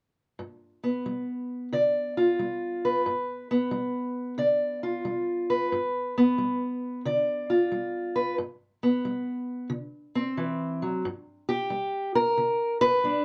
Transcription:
0.39 1.01 G2 medium
0.84 3.50 B3 soft
1.06 1.68 G3 medium
1.73 2.35 D3 medium
1.73 2.84 D5 medium
2.17 3.09 F4 medium
2.39 3.01 G3 medium
2.85 4.38 B4 medium
3.06 3.68 G2 medium
3.51 6.17 B3 medium
3.71 4.34 G3 medium
4.38 5.00 D3 medium
4.38 5.49 D5 medium
4.83 5.75 F4 medium
5.05 5.67 G3 medium
5.50 7.06 B4 medium
5.72 6.34 G2 medium
6.18 8.36 B3 medium
6.38 7.00 G3 medium
7.05 7.67 D3 medium
7.05 8.15 D5 medium
7.50 8.36 F4 medium
7.72 8.34 G3 medium
8.16 8.35 B4 medium
8.38 9.00 G2 medium
8.83 9.69 B3 medium
9.05 9.67 G3 medium
9.70 10.33 D3 medium
10.15 11.02 C4 medium
10.37 10.82 E3 medium
10.82 11.05 F#3 medium
11.05 11.67 G2 medium
11.49 12.15 G4 medium
11.70 12.32 G3 medium
12.15 12.81 A#4 medium
12.37 12.99 D3 medium
12.81 13.25 B4 loud
13.04 13.25 G3 medium
13.04 13.25 D4 soft

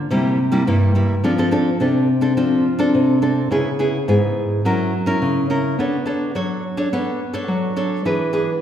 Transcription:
0.10 0.65 C3 medium
0.10 0.37 G3 medium
0.10 0.38 A#3 medium
0.10 0.38 E4 medium
0.52 0.62 G3 medium
0.52 0.62 A#3 medium
0.52 0.63 E4 medium
0.67 1.21 G2 medium
0.67 0.91 G3 medium
0.67 0.91 A#3 medium
0.67 0.92 E4 medium
0.95 1.14 G3 soft
0.95 1.14 A#3 soft
0.95 1.14 E4 medium
1.24 1.78 F3 medium
1.24 1.33 C4 medium
1.24 1.33 D4 medium
1.24 1.33 A4 medium
1.38 1.48 C4 medium
1.38 1.48 D4 medium
1.38 1.48 A4 medium
1.51 1.69 C4 medium
1.51 1.69 D4 medium
1.51 1.69 A4 medium
1.80 2.35 C3 medium
1.80 2.07 C4 medium
1.80 2.08 D4 soft
1.80 2.08 A4 medium
2.21 2.32 C4 medium
2.21 2.32 D4 medium
2.21 2.32 A4 medium
2.37 2.91 F3 medium
2.37 2.64 C4 medium
2.37 2.64 D4 medium
2.37 2.64 A4 medium
2.79 3.18 C4 medium
2.79 3.18 D4 medium
2.79 3.18 A4 medium
2.95 3.49 C3 medium
3.22 3.49 C4 medium
3.22 3.49 D4 soft
3.22 3.49 A4 medium
3.51 4.05 C#3 medium
3.51 3.68 B3 soft
3.51 3.68 E4 medium
3.51 3.68 G#4 medium
3.79 3.96 B3 medium
3.79 3.96 E4 medium
3.79 3.96 G#4 medium
4.08 4.62 G#2 medium
4.08 4.61 B3 medium
4.08 4.61 E4 medium
4.08 4.61 G#4 medium
4.65 5.19 F#3 medium
4.65 4.92 C#4 medium
4.65 4.92 E4 medium
4.65 4.92 A#4 medium
5.06 5.45 C#4 medium
5.06 5.45 E4 medium
5.06 5.45 A#4 medium
5.22 5.76 C#3 medium
5.50 5.76 C#4 medium
5.50 5.76 E4 medium
5.50 5.77 A#4 medium
5.79 6.33 B3 medium
5.79 5.96 D4 medium
5.79 5.96 A4 medium
5.79 5.96 C#5 medium
6.06 6.30 D4 medium
6.06 6.31 A4 medium
6.06 6.31 C#5 medium
6.35 6.89 F#3 medium
6.35 6.62 D4 soft
6.35 6.62 A4 medium
6.35 6.62 C#5 medium
6.77 6.87 D4 medium
6.77 6.87 A4 medium
6.77 6.88 C#5 medium
6.93 7.47 B3 medium
6.93 7.19 D4 medium
6.93 7.19 A4 medium
6.93 7.19 C#5 medium
7.33 7.72 D4 medium
7.33 7.72 A4 medium
7.33 7.73 C#5 medium
7.48 8.03 F#3 medium
7.76 8.03 D4 medium
7.76 8.03 A4 medium
7.76 8.03 C#5 medium
8.05 8.60 E3 medium
8.05 8.29 D4 medium
8.05 8.30 G#4 medium
8.05 8.30 B4 medium
8.33 8.50 D4 medium
8.33 8.50 G#4 medium
8.33 8.51 B4 medium

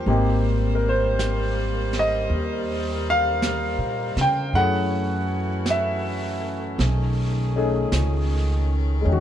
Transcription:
0.00 0.11 F4 medium
0.00 4.51 C5 medium
0.06 2.26 G#1 medium
0.06 4.51 G3 medium
0.06 4.54 A#3 soft
0.06 4.51 A#3 medium
0.06 4.55 C4 soft
0.06 4.55 D#4 soft
0.06 4.55 G4 medium
0.06 brush sweep soft
0.75 0.84 A#4 medium
0.89 1.94 C5 medium
1.19 brush sweep soft
1.19 snare soft
1.19 hi-hat pedal medium
1.93 snare soft
1.99 3.05 D#5 medium
2.30 3.75 D#2 medium
2.30 4.52 A#4 medium
2.30 brush sweep soft
3.10 4.17 F5 loud
3.42 brush sweep soft
3.42 snare soft
3.42 hi-hat pedal soft
3.78 4.14 A#2 soft
4.16 4.51 C#3 medium
4.16 snare soft
4.21 4.57 G5 medium
4.53 6.75 F#2 medium
4.53 6.79 E3 medium
4.53 6.80 A3 soft
4.53 8.90 A3 medium
4.53 6.80 C#4 soft
4.53 6.78 C#4 medium
4.53 6.81 E4 soft
4.53 6.78 F#4 medium
4.53 6.81 G#4 soft
4.53 5.64 F#5 loud
4.53 brush sweep soft
5.66 brush sweep soft
5.66 snare soft
5.66 hi-hat pedal soft
5.70 6.78 E5 medium
6.79 7.89 B1 medium
6.79 9.20 D#3 medium
6.79 9.20 C#4 medium
6.79 8.90 G#4 medium
6.79 brush sweep soft
6.79 snare soft
7.56 9.06 A3 medium
7.56 9.03 C#4 soft
7.56 9.07 D#4 soft
7.56 9.07 G#4 medium
7.92 9.02 C#2 medium
7.92 brush sweep soft
7.92 snare soft
7.92 hi-hat pedal medium
9.01 9.20 G#3 soft
9.01 9.20 C#4 soft
9.05 9.20 E2 medium
9.05 9.20 D#3 soft
9.05 9.20 G#3 medium
9.05 9.20 F#4 medium
9.05 brush sweep soft
9.13 9.20 F#4 medium

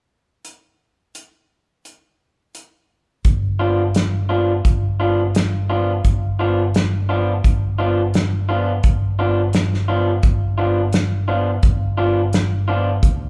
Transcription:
0.45 closed hi-hat soft
1.15 closed hi-hat medium
1.85 closed hi-hat soft
2.55 closed hi-hat soft
3.25 4.61 G1 medium
3.25 kick medium
3.25 closed hi-hat medium
3.59 3.83 F3 medium
3.59 3.82 B3 medium
3.59 3.82 D4 medium
3.59 3.82 F4 medium
3.95 snare medium
3.95 closed hi-hat medium
4.29 4.52 F3 medium
4.29 4.52 B3 medium
4.29 4.52 D4 medium
4.29 4.52 F4 medium
4.65 6.01 G1 medium
4.65 kick medium
4.65 closed hi-hat soft
5.00 5.23 F3 soft
5.00 5.22 B3 medium
5.00 5.22 D4 medium
5.00 5.22 F4 medium
5.35 snare loud
5.35 closed hi-hat soft
5.70 5.92 F3 medium
5.70 5.92 B3 medium
5.70 5.92 D4 medium
5.70 5.92 F4 medium
6.04 7.40 G1 medium
6.04 kick medium
6.04 closed hi-hat soft
6.39 6.62 F3 soft
6.39 6.62 B3 medium
6.39 6.62 D4 medium
6.39 6.62 F4 medium
6.74 snare loud
6.74 closed hi-hat soft
7.09 7.32 F3 soft
7.09 7.32 B3 medium
7.09 7.32 D4 medium
7.09 7.31 F4 medium
7.44 8.80 G1 medium
7.44 kick medium
7.44 closed hi-hat soft
7.79 8.02 F3 medium
7.79 8.02 B3 medium
7.79 8.01 D4 medium
7.79 8.01 F4 medium
8.14 snare medium
8.14 closed hi-hat soft
8.49 8.72 F3 medium
8.49 8.72 B3 medium
8.49 8.71 D4 medium
8.49 8.71 F4 medium
8.83 10.20 G1 medium
8.83 kick medium
8.83 closed hi-hat soft
9.19 9.42 F3 medium
9.19 9.42 B3 medium
9.19 9.41 D4 medium
9.19 9.41 F4 medium
9.53 snare medium
9.53 closed hi-hat medium
9.74 snare soft
9.88 10.12 F3 medium
9.88 10.11 B3 medium
9.88 10.11 D4 medium
9.88 10.11 F4 medium
10.23 11.59 G1 medium
10.23 kick medium
10.23 closed hi-hat soft
10.58 10.81 F3 medium
10.58 10.81 B3 medium
10.58 10.81 D4 medium
10.58 10.80 F4 medium
10.93 snare medium
10.93 closed hi-hat medium
11.28 11.51 F3 medium
11.28 11.51 B3 medium
11.28 11.51 D4 medium
11.28 11.50 F4 medium
11.63 12.99 G1 medium
11.63 kick loud
11.63 closed hi-hat soft
11.97 12.21 F3 medium
11.97 12.21 B3 medium
11.97 12.20 D4 medium
11.97 12.20 F4 medium
12.33 snare medium
12.33 closed hi-hat medium
12.68 12.91 F3 medium
12.68 12.91 B3 medium
12.68 12.90 D4 medium
12.68 12.90 F4 medium
13.03 13.29 D2 medium
13.03 kick medium
13.03 closed hi-hat medium

